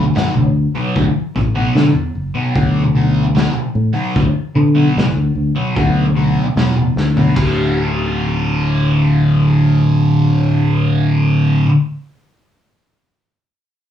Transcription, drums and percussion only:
0.16 snare, floor tom
0.96 kick
1.36 kick
1.77 snare
2.56 kick
3.37 snare
4.16 kick
4.98 snare
5.76 kick
6.57 snare
6.97 snare
7.17 floor tom
7.36 kick, crash

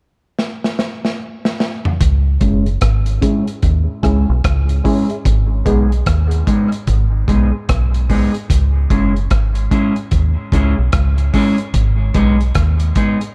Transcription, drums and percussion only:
0.39 snare
0.64 snare
0.79 snare
1.05 snare
1.45 snare
1.60 snare
1.85 floor tom
2.01 kick, closed hi-hat
2.41 kick, closed hi-hat
2.66 closed hi-hat
2.81 kick, cross-stick, closed hi-hat
3.06 closed hi-hat
3.22 kick, closed hi-hat
3.47 closed hi-hat
3.62 kick, closed hi-hat
4.03 kick, cross-stick, closed hi-hat
4.44 kick, cross-stick, closed hi-hat
4.69 closed hi-hat
4.85 kick, open hi-hat
5.10 closed hi-hat
5.25 kick, closed hi-hat
5.66 kick, closed hi-hat
5.92 closed hi-hat
6.06 kick, cross-stick, closed hi-hat
6.31 closed hi-hat
6.47 kick, closed hi-hat
6.72 closed hi-hat
6.87 kick, closed hi-hat
7.28 kick, closed hi-hat
7.69 kick, cross-stick, closed hi-hat
7.94 closed hi-hat
8.10 kick, open hi-hat
8.34 closed hi-hat
8.50 kick, closed hi-hat
8.90 kick, closed hi-hat
9.16 closed hi-hat
9.30 kick, cross-stick, closed hi-hat
9.55 closed hi-hat
9.71 kick, closed hi-hat
9.96 closed hi-hat
10.11 kick, closed hi-hat
10.52 kick, closed hi-hat
10.92 kick, cross-stick, closed hi-hat
11.18 closed hi-hat
11.34 kick, open hi-hat
11.58 closed hi-hat
11.74 kick, closed hi-hat
12.14 kick, closed hi-hat
12.40 closed hi-hat
12.55 kick, cross-stick, closed hi-hat
12.80 closed hi-hat
12.95 kick, closed hi-hat
13.21 closed hi-hat

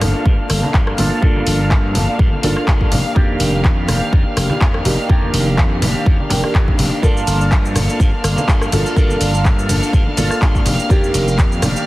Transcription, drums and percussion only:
0.01 cross-stick, open hi-hat, tambourine, low conga
0.14 tambourine
0.26 kick
0.50 cross-stick, open hi-hat
0.63 tambourine, high conga
0.74 kick, clap
0.87 cross-stick
0.98 open hi-hat, tambourine, low conga
1.11 tambourine
1.22 kick
1.36 high conga
1.47 open hi-hat, tambourine
1.60 tambourine
1.71 kick, clap
1.95 open hi-hat, tambourine, low conga
2.08 tambourine
2.19 kick
2.33 high conga
2.43 open hi-hat, tambourine, low conga
2.57 cross-stick, tambourine
2.68 kick, clap
2.81 kick
2.91 open hi-hat, tambourine, low conga
3.05 tambourine
3.16 kick
3.40 open hi-hat, tambourine
3.53 tambourine
3.64 kick, clap
3.88 cross-stick, open hi-hat, tambourine, low conga
4.01 tambourine
4.13 kick
4.37 cross-stick, open hi-hat, tambourine
4.50 tambourine, high conga
4.61 kick, clap
4.74 cross-stick
4.85 open hi-hat, tambourine, low conga
4.99 tambourine
5.09 kick
5.23 high conga
5.34 open hi-hat, tambourine
5.47 tambourine
5.58 kick, clap
5.82 open hi-hat, tambourine, low conga
5.96 tambourine
6.06 kick
6.20 high conga
6.30 open hi-hat, tambourine, low conga
6.43 cross-stick, tambourine
6.55 kick, clap
6.68 kick
6.79 open hi-hat, tambourine, low conga
6.92 tambourine
7.03 kick, shaker
7.17 shaker
7.27 open hi-hat, tambourine, shaker
7.40 tambourine, shaker
7.51 kick, clap, shaker
7.65 shaker
7.75 cross-stick, open hi-hat, tambourine, low conga, shaker
7.89 tambourine, shaker
7.99 kick, tambourine, shaker
8.24 cross-stick, open hi-hat, tambourine, shaker
8.37 tambourine, high conga, shaker
8.48 kick, clap, shaker
8.62 cross-stick, shaker
8.72 open hi-hat, tambourine, low conga, shaker
8.86 tambourine, shaker
8.96 kick, shaker
9.09 high conga, shaker
9.20 open hi-hat, tambourine, shaker
9.33 tambourine, shaker
9.45 kick, clap, tambourine, shaker
9.59 shaker
9.69 open hi-hat, tambourine, low conga, shaker
9.83 tambourine, shaker
9.93 kick, tambourine, shaker
10.06 high conga
10.17 open hi-hat, tambourine, low conga, shaker
10.31 cross-stick, tambourine, shaker
10.42 kick, clap, shaker
10.55 kick, shaker
10.66 open hi-hat, tambourine, low conga, shaker
10.79 tambourine, shaker
10.90 kick, tambourine, shaker
11.04 shaker
11.14 open hi-hat, tambourine, shaker
11.28 tambourine, shaker
11.38 kick, clap, shaker
11.52 shaker
11.62 cross-stick, open hi-hat, tambourine, low conga, shaker
11.76 tambourine, shaker

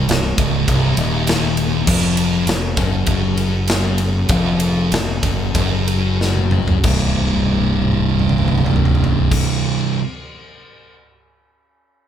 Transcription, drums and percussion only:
0.09 snare, ride
0.38 kick, ride
0.68 kick, ride
0.97 ride
1.27 snare, ride
1.57 ride
1.87 kick, crash
2.17 ride
2.47 snare, ride
2.77 kick, snare, ride
3.06 kick, ride
3.37 ride
3.68 snare, ride
3.98 ride
4.29 kick, ride
4.60 ride
4.92 snare, ride
5.23 kick, ride
5.55 kick, ride
5.88 ride
6.21 snare
6.35 high tom
6.51 mid tom
6.68 floor tom
6.83 kick, crash
7.17 high tom
7.27 high tom
7.36 high tom
7.46 high tom
7.54 high tom
7.64 high tom
7.73 mid tom
7.82 mid tom
7.92 mid tom
8.01 mid tom
8.10 mid tom
8.19 mid tom
8.29 mid tom
8.38 mid tom
8.48 mid tom
8.58 mid tom
8.66 floor tom
8.76 floor tom
8.85 floor tom
8.95 floor tom
9.04 floor tom
9.32 kick, crash

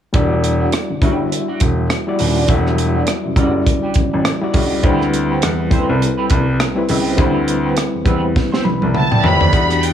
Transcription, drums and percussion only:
0.14 kick, closed hi-hat
0.44 closed hi-hat
0.72 cross-stick, closed hi-hat
1.02 kick, closed hi-hat
1.32 closed hi-hat
1.60 kick, closed hi-hat
1.90 cross-stick, closed hi-hat
2.19 open hi-hat
2.48 kick, closed hi-hat
2.67 cross-stick
2.78 closed hi-hat
3.07 cross-stick, closed hi-hat
3.36 kick, closed hi-hat
3.67 kick, closed hi-hat
3.94 kick, closed hi-hat
4.25 cross-stick, closed hi-hat
4.54 kick, open hi-hat
4.83 kick, closed hi-hat
5.01 cross-stick
5.14 closed hi-hat
5.42 cross-stick, closed hi-hat
5.71 kick, closed hi-hat
6.02 closed hi-hat
6.30 kick, closed hi-hat
6.60 cross-stick, closed hi-hat
6.89 open hi-hat
7.18 kick, closed hi-hat
7.48 closed hi-hat
7.77 cross-stick, closed hi-hat
8.06 kick, closed hi-hat
8.36 kick, snare
8.54 snare
8.65 high tom
8.82 high tom
8.95 mid tom
9.12 mid tom
9.24 floor tom
9.41 floor tom
9.53 kick, closed hi-hat
9.70 cross-stick, closed hi-hat
9.83 closed hi-hat

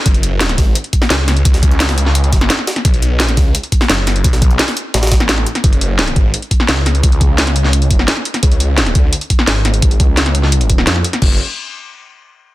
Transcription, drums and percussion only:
0.06 kick, closed hi-hat
0.14 closed hi-hat
0.23 closed hi-hat
0.41 snare, closed hi-hat
0.49 snare, closed hi-hat
0.58 kick, snare, closed hi-hat, open hi-hat
0.75 closed hi-hat
0.84 closed hi-hat
0.93 kick, closed hi-hat
1.02 snare
1.10 snare, closed hi-hat
1.28 snare, closed hi-hat
1.37 closed hi-hat
1.45 kick, closed hi-hat
1.54 snare, closed hi-hat
1.63 kick, closed hi-hat
1.71 closed hi-hat
1.80 snare, closed hi-hat
1.89 snare, closed hi-hat
1.98 closed hi-hat
2.06 snare
2.15 closed hi-hat
2.24 closed hi-hat
2.33 kick, snare, closed hi-hat
2.41 snare, closed hi-hat
2.50 snare, closed hi-hat
2.59 snare
2.67 snare, closed hi-hat
2.76 snare, closed hi-hat
2.85 kick, closed hi-hat
2.94 closed hi-hat
3.02 closed hi-hat
3.20 snare, closed hi-hat
3.28 snare, closed hi-hat
3.37 kick, snare, closed hi-hat, open hi-hat
3.55 closed hi-hat
3.63 closed hi-hat
3.72 kick, closed hi-hat
3.81 snare
3.90 snare, closed hi-hat
4.07 snare, closed hi-hat
4.16 closed hi-hat
4.24 kick, closed hi-hat
4.33 snare, closed hi-hat
4.42 kick, closed hi-hat
4.51 closed hi-hat
4.59 snare, closed hi-hat
4.68 snare, closed hi-hat
4.77 closed hi-hat
4.94 snare, closed hi-hat
5.03 snare, closed hi-hat
5.07 snare, closed hi-hat
5.12 kick, snare, closed hi-hat
5.20 snare, closed hi-hat
5.29 snare, closed hi-hat
5.38 snare
5.46 closed hi-hat
5.55 snare, closed hi-hat
5.64 kick, closed hi-hat
5.73 closed hi-hat
5.81 closed hi-hat
5.99 snare, closed hi-hat
6.08 snare, closed hi-hat
6.16 kick, closed hi-hat
6.34 closed hi-hat
6.42 closed hi-hat
6.51 kick, closed hi-hat
6.60 snare
6.69 snare, closed hi-hat
6.86 snare, closed hi-hat
6.95 closed hi-hat
7.03 kick, closed hi-hat
7.12 closed hi-hat
7.21 kick, closed hi-hat
7.38 snare, closed hi-hat
7.47 snare, closed hi-hat
7.56 closed hi-hat
7.64 snare
7.73 closed hi-hat
7.82 closed hi-hat
7.91 kick, closed hi-hat
7.99 snare
8.08 snare, closed hi-hat
8.17 snare
8.25 closed hi-hat
8.34 snare, closed hi-hat
8.43 kick, closed hi-hat
8.52 closed hi-hat
8.60 closed hi-hat
8.78 snare, closed hi-hat
8.86 snare, closed hi-hat
8.95 kick, closed hi-hat
9.13 closed hi-hat
9.21 closed hi-hat
9.30 kick, closed hi-hat
9.39 snare
9.47 snare, closed hi-hat
9.65 snare, closed hi-hat
9.74 closed hi-hat
9.82 kick, closed hi-hat
9.91 closed hi-hat
10.00 kick, closed hi-hat
10.17 snare, closed hi-hat
10.26 snare, closed hi-hat
10.35 closed hi-hat
10.43 snare
10.52 closed hi-hat
10.61 closed hi-hat
10.70 kick, closed hi-hat
10.78 snare
10.87 snare, closed hi-hat
10.96 snare
11.04 closed hi-hat
11.13 snare, closed hi-hat
11.22 kick, crash

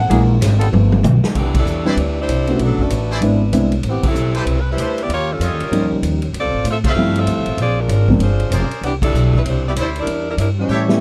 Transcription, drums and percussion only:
0.11 ride
0.42 snare, hi-hat pedal, ride
0.61 ride
0.73 high tom
0.92 high tom
1.04 hi-hat pedal, mid tom
1.24 snare
1.35 kick, crash
1.54 kick, crash
1.66 hi-hat pedal
1.97 ride
2.29 hi-hat pedal, ride
2.47 ride
2.59 ride
2.79 kick
2.90 hi-hat pedal, ride
3.22 ride
3.53 hi-hat pedal, ride
3.72 ride
3.83 ride
4.03 kick, crash
4.15 hi-hat pedal
4.35 ride
4.47 ride
4.78 hi-hat pedal, ride
4.98 ride
5.10 ride
5.41 hi-hat pedal, ride
5.60 ride
5.73 ride
6.03 hi-hat pedal, ride
6.22 ride
6.34 ride
6.65 hi-hat pedal, ride
6.84 kick, crash
7.16 ride
7.27 hi-hat pedal, ride
7.46 ride
7.58 ride
7.89 hi-hat pedal, ride
8.08 kick
8.20 ride
8.40 ride
8.52 hi-hat pedal, ride
8.71 ride
8.83 ride
9.02 kick, crash
9.15 hi-hat pedal
9.33 kick
9.46 ride
9.76 hi-hat pedal, ride
9.96 ride
10.07 ride
10.38 hi-hat pedal, ride
10.89 snare

